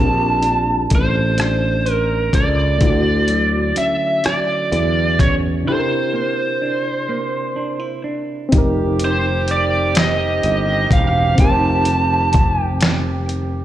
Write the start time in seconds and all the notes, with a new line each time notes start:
Already playing: A#1 A#3 C4 D4 F4 A4 C5 A5
0.01 G4
0.42 D4, closed hi-hat
0.90 A1 A4, kick, closed hi-hat
0.95 C5
1.38 D4, cross-stick, closed hi-hat
1.86 C5, closed hi-hat
1.92 A#4
2.33 C#2 A4 D5, kick, closed hi-hat
2.77 D3 A3 E4, kick, closed hi-hat
2.82 D2 F4
2.87 F#4 A4
3.28 F#3, closed hi-hat
3.76 C#4 E5, muted fretless electric bass stroke, closed hi-hat
4.24 F#3 D5, muted fretless electric bass stroke, cross-stick, closed hi-hat
4.72 E2 E4, closed hi-hat
5.19 C#4 C#5, kick, closed hi-hat
5.63 C3 D4
5.67 E4 G4 C5
5.72 A4
5.79 A#4
6.13 A#3
6.62 D4
7.09 A#3
7.56 D4
7.80 E4
8.04 D4
8.49 C4 D#4, kick, closed hi-hat
8.53 F1 D#3 C4 G4
8.58 A#4
8.99 closed hi-hat
9.05 C5
9.48 D5, closed hi-hat
9.95 D#5, snare, closed hi-hat
10.43 G1, closed hi-hat
10.91 E1 F5, kick, closed hi-hat
11.35 F1 C4 D#4, kick, closed hi-hat
11.40 G4 A5
11.44 A#4
11.51 C5
11.85 closed hi-hat
12.33 kick, closed hi-hat
12.61 G5
12.81 snare, closed hi-hat
13.29 closed hi-hat